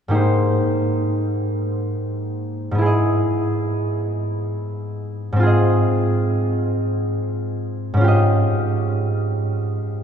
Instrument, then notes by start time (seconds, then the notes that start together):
harp
0.08 G#2 A#3 D#4 G4
0.15 C5
2.71 G#2 B3
2.78 E4 G#4
2.86 D#5
5.32 G#2 C4
5.40 F4 G#4
5.47 D#5
7.94 G#2 C#4
8.01 F4 G4
8.08 D#5